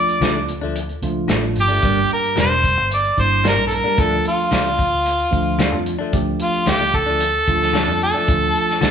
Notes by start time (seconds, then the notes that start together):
Already playing: F3 A3 D4 F4 D5
0.09 closed hi-hat
0.20 C#2 D3 F3 A3 D4, snare, closed hi-hat
0.49 closed hi-hat
0.61 D2 F3 A3 D4
0.76 closed hi-hat
0.89 closed hi-hat
1.02 C#2 F3 A3 D4 F4, closed hi-hat
1.28 A1 D3 F3 A3 D4, snare, closed hi-hat
1.56 G1, open hi-hat
1.60 G4
1.68 F3 A3 D4
1.82 G1 G2 G3 A#3 D4 G4, kick, closed hi-hat
2.09 A#4, closed hi-hat
2.23 closed hi-hat
2.36 E1 G2 G3 A#3 D4, snare, closed hi-hat
2.40 C5
2.64 kick, closed hi-hat
2.77 G1
2.91 D5, closed hi-hat
3.04 closed hi-hat
3.17 G1 G3 A#3 D4 E4 C5, kick, closed hi-hat
3.44 G2 G3 A#3 D4, snare, closed hi-hat
3.48 A#4
3.58 A#1
3.67 A4, closed hi-hat
3.74 A#4
3.84 G3 A#3 D4
3.97 D2 D3 F3 A3 D4 F4 A4, kick, closed hi-hat
4.25 F4, closed hi-hat
4.39 closed hi-hat
4.51 C#2 D3 F3 A3 D4, snare, closed hi-hat
4.79 kick, closed hi-hat
4.92 D2
5.06 closed hi-hat
5.20 closed hi-hat
5.31 D2 F3 A3 D4 F4, kick, closed hi-hat
5.59 D3 F3 A3 D4, snare, closed hi-hat
5.72 F2
5.86 closed hi-hat
5.99 F3 A3 D4
6.13 D2 F3 A3 D4 G4, kick, closed hi-hat
6.40 F4, closed hi-hat
6.53 closed hi-hat
6.66 C#2 D3 F3 A3 D4 G4, snare, closed hi-hat
6.93 A4, kick, closed hi-hat
7.06 D2 F3 A3 D4
7.20 closed hi-hat
7.34 closed hi-hat
7.47 D2 F3 A3 D4 F4, kick, closed hi-hat
7.62 snare
7.73 D3 F3 A3 D4, snare, closed hi-hat
7.88 F2
8.02 A4, closed hi-hat
8.14 F3 A3 D4
8.28 D2 F3 A3 D4 F4, kick, closed hi-hat
8.56 closed hi-hat
8.70 snare, closed hi-hat
8.81 C#2 D3 F3 A3 D4, snare, closed hi-hat